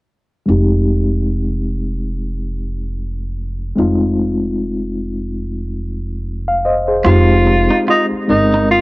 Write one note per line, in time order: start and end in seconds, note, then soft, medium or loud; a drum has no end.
0.46 3.72 F1 medium
0.46 3.71 G#3 medium
0.46 3.72 C4 medium
0.46 3.73 D#4 medium
0.51 3.73 G4 medium
3.76 7.01 F1 medium
3.76 7.00 G#3 medium
3.76 7.01 C4 medium
3.76 7.02 D#4 medium
3.80 7.02 F4 medium
6.48 6.63 F5 medium
6.65 6.87 C5 medium
6.65 6.87 D#5 medium
6.88 7.27 G#4 soft
6.88 7.26 C5 medium
7.04 7.66 F1 loud
7.04 8.21 G#3 medium
7.04 8.22 C4 medium
7.04 8.22 D#4 medium
7.04 7.21 F4 medium
7.04 7.84 F4 medium
7.04 8.23 G4 medium
7.47 muted clean electric guitar stroke soft
7.71 7.82 D#4 medium
7.88 8.06 D#4 medium
7.88 8.04 F4 medium
8.12 muted upright bass stroke soft
8.28 8.81 G1 medium
8.28 8.81 G#3 medium
8.28 8.81 C4 medium
8.28 8.81 D#4 medium
8.28 8.67 D#4 medium
8.28 8.81 A#4 medium
8.28 muted clean electric guitar stroke soft
8.54 8.65 D#4 medium
8.71 8.81 F4 medium